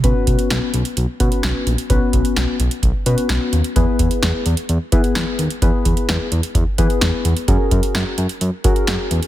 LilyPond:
<<
  \new Staff \with { instrumentName = "Synth keys" } { \time 4/4 \key b \major \tempo 4 = 129 <b cis' fis' b'>4. r4 <b cis' fis' b'>4 r8 | <b cis' fis' b'>4. r4 <b cis' fis' b'>4 r8 | <b e' gis' b'>4. r4 <b e' gis' b'>4 r8 | <b e' gis' b'>4. r4 <b e' gis' b'>4 r8 |
<cis' fis' gis' ais'>4. r4 <cis' fis' gis' ais'>4 r8 | }
  \new Staff \with { instrumentName = "Analog synth bass" } { \clef bass \time 4/4 \key b \major b,,16 r16 b,,16 r16 b,,16 r16 b,,16 r16 b,,16 r16 b,16 r16 b,,16 r16 ais,,16 r16 | b,,16 r16 b,,16 r16 b,,16 r16 b,,16 r16 b,,16 r16 b,16 r16 b,,16 r16 dis,16 r16 | e,16 r16 e,16 r16 e,16 r16 e,16 r16 e,16 r16 e16 r16 e,16 r16 dis,16 r16 | e,16 r16 e,16 r16 e,16 r16 e,16 r16 e,16 r16 e16 r16 e,16 r16 e,16 r16 |
fis,16 r16 fis,16 r16 fis,16 r16 fis,16 r16 fis,16 r16 fis16 r16 fis,16 r16 e,16 r16 | }
  \new DrumStaff \with { instrumentName = "Drums" } \drummode { \time 4/4 <hh bd>8 <hh bd>16 hh16 <hh sn>8 hh16 hh16 hh8 <hh bd>16 hh16 <hh sn>8 hh16 hh16 | <hh bd>8 <hh bd>16 hh16 <hh sn>8 hh16 hh16 <hh bd>8 hh16 hh16 <hh sn>8 hh16 hh16 | <hh bd>8 <hh bd>16 hh16 <hh sn>8 hh16 hh16 hh8 <hh bd>16 hh16 <hh sn>8 hh16 hh16 | <hh bd>8 <hh bd>16 hh16 <hh sn>8 hh16 hh16 <hh bd>8 <hh bd>16 hh16 <hh sn>8 hh16 hh16 |
<hh bd>8 <hh bd>16 hh16 <hh sn>8 hh16 hh16 hh8 <hh bd>16 hh16 <hh sn>8 hh16 hh16 | }
>>